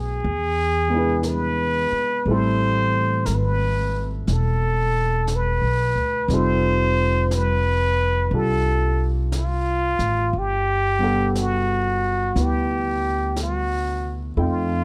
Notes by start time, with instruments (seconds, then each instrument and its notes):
Already playing: upright bass B1, grand piano A3 B3 D4 F#4 B4, muted trumpet G#4
0.23 upright bass E2, brush sweep
0.88 grand piano G#3 B3
0.93 grand piano D4 E4
0.98 grand piano B4
1.23 brush sweep, snare, hi-hat pedal
1.28 muted trumpet B4
1.92 muted upright bass stroke
2.25 upright bass A1, grand piano G3 A3, brush sweep
2.29 grand piano C4 E4 A4, muted trumpet C5
3.26 upright bass G#1, muted trumpet A#4, brush sweep, snare, hi-hat pedal
3.34 muted trumpet B4
4.27 upright bass E1, brush sweep, snare
4.33 muted trumpet A4
5.27 brush sweep, snare, hi-hat pedal
5.36 muted trumpet B4
5.62 upright bass B1
5.95 upright bass D2
6.28 upright bass F1, grand piano G3 C4 D#4, brush sweep, snare
6.33 grand piano F4 A4, muted trumpet C5
7.31 muted trumpet B4, brush sweep, snare, hi-hat pedal
8.31 upright bass C2, grand piano D4 F4 G4 A4, brush sweep
8.35 muted trumpet A4
9.32 brush sweep, snare, hi-hat pedal
9.37 muted trumpet F4
9.99 upright bass A1, snare
10.33 upright bass G1, brush sweep
10.39 muted trumpet G4
10.99 grand piano G3 B3 D4 F#5
11.04 grand piano A4
11.35 brush sweep, snare, hi-hat pedal
11.39 muted trumpet F#4
12.35 upright bass D2, grand piano B3 E4 B4, brush sweep, snare
12.42 muted trumpet G4
13.36 brush sweep, snare, hi-hat pedal
13.42 muted trumpet F#4
14.37 upright bass F2, grand piano F3 A3 C4 D#4 G5, muted trumpet E4, brush sweep
14.43 muted trumpet F4